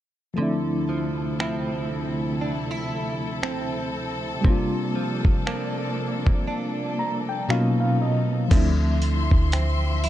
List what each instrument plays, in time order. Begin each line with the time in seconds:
0.34 string section C3 E4, clean electric guitar D3, fm electric piano F3 A3
0.38 string section D2 A4, fm electric piano C4 D4
0.42 fm electric piano E4
0.89 clean electric guitar F3
1.39 clean electric guitar F3 C4 E4, finger snap
2.41 clean electric guitar D4
2.71 clean electric guitar E4
3.43 clean electric guitar C4, finger snap
4.41 clean electric guitar C3, fm electric piano G3 A#3, string section A#3 D4, kick
4.45 fm electric piano C4 D4
4.50 fm electric piano F4
4.95 clean electric guitar F3
5.25 kick
5.46 clean electric guitar F3 A#3 D4, finger snap
6.26 kick
6.48 clean electric guitar D4
6.99 fm electric piano A#5
7.29 fm electric piano G5
7.48 fm electric piano B2 F#3 A#3 C#4 D#4 F5, clean electric guitar B2, string section B2 C#4 D#4, finger snap
7.53 fm electric piano F4
7.80 fm electric piano F5
8.02 fm electric piano D#5
8.48 808-style bass D2, clean electric guitar D3 E4, fm electric piano F3 A3, string section F3 E5 C6, kick, closed hi-hat, crash
8.53 fm electric piano C4 D4
8.57 fm electric piano E4
9.02 closed hi-hat
9.31 808-style bass D2, kick
9.52 clean electric guitar C4, finger snap, closed hi-hat
10.04 clean electric guitar E4, closed hi-hat